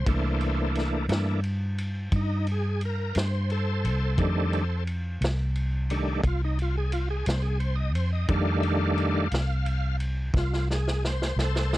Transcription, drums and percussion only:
0.06 kick loud
0.06 ride loud
0.41 ride medium
0.75 snare soft
0.75 ride medium
1.09 snare loud
1.09 ride medium
1.44 ride medium
1.78 ride medium
2.12 kick loud
2.12 ride medium
2.47 ride medium
2.81 ride medium
3.15 snare loud
3.15 ride medium
3.50 ride medium
3.85 ride medium
4.18 kick loud
4.18 ride medium
4.53 ride medium
4.87 ride medium
5.22 snare loud
5.22 ride medium
5.55 ride medium
5.90 ride medium
6.24 kick loud
6.24 ride medium
6.59 ride medium
6.92 ride medium
7.26 snare loud
7.26 ride medium
7.60 ride medium
7.95 ride medium
8.28 kick loud
8.28 ride medium
8.63 ride medium
8.98 ride medium
9.31 snare loud
9.31 ride medium
9.66 ride medium
10.00 ride medium
10.34 kick loud
10.34 snare medium
10.53 snare medium
10.71 snare medium
10.88 snare medium
11.05 snare medium
11.22 snare medium
11.39 snare medium
11.56 snare medium
11.73 snare loud

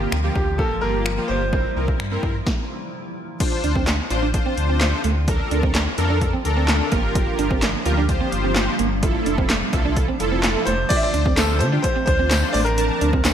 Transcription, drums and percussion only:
0.12 finger snap loud
0.35 kick medium
0.59 kick medium
1.06 finger snap loud
1.53 kick loud
1.88 kick medium
2.00 finger snap loud
2.23 kick medium
2.47 kick loud
2.47 snare medium
3.40 kick loud
3.40 closed hi-hat loud
3.40 crash medium
3.64 closed hi-hat medium
3.76 kick medium
3.87 snare medium
3.87 clap loud
3.87 closed hi-hat medium
4.10 closed hi-hat medium
4.34 kick medium
4.34 closed hi-hat medium
4.58 closed hi-hat medium
4.81 snare medium
4.81 clap loud
4.81 closed hi-hat medium
5.04 closed hi-hat medium
5.28 kick loud
5.28 closed hi-hat loud
5.51 closed hi-hat medium
5.63 kick medium
5.75 snare medium
5.75 clap loud
5.75 closed hi-hat medium
5.98 closed hi-hat medium
6.21 kick medium
6.21 closed hi-hat medium
6.45 closed hi-hat medium
6.68 snare medium
6.68 clap loud
6.68 closed hi-hat medium
6.92 kick loud
6.92 closed hi-hat medium
7.15 kick loud
7.15 closed hi-hat loud
7.39 closed hi-hat medium
7.51 kick medium
7.62 snare medium
7.62 clap loud
7.62 closed hi-hat medium
7.86 closed hi-hat medium
8.09 kick medium
8.09 closed hi-hat medium
8.32 closed hi-hat medium
8.56 snare medium
8.56 clap loud
8.56 closed hi-hat medium
8.79 closed hi-hat medium
9.03 kick loud
9.03 closed hi-hat loud
9.26 closed hi-hat medium
9.38 kick medium
9.50 snare medium
9.50 clap loud
9.50 closed hi-hat medium
9.73 kick medium
9.73 closed hi-hat medium
9.96 kick medium
9.96 closed hi-hat medium
10.20 closed hi-hat medium
10.43 snare medium
10.43 clap loud
10.43 closed hi-hat medium
10.67 closed hi-hat medium
10.90 kick loud
10.90 closed hi-hat loud
10.90 crash loud
11.14 closed hi-hat medium
11.26 kick medium
11.37 snare medium
11.37 clap loud
11.37 closed hi-hat medium
11.37 tambourine loud
11.61 closed hi-hat medium
11.84 kick medium
11.84 closed hi-hat medium
12.07 kick loud
12.07 closed hi-hat medium
12.31 snare medium
12.31 clap loud
12.31 closed hi-hat medium
12.31 tambourine medium
12.54 open hi-hat medium
12.66 closed hi-hat soft
12.78 closed hi-hat loud
13.01 closed hi-hat medium
13.13 kick medium
13.25 snare medium
13.25 clap loud
13.25 closed hi-hat medium
13.25 tambourine loud

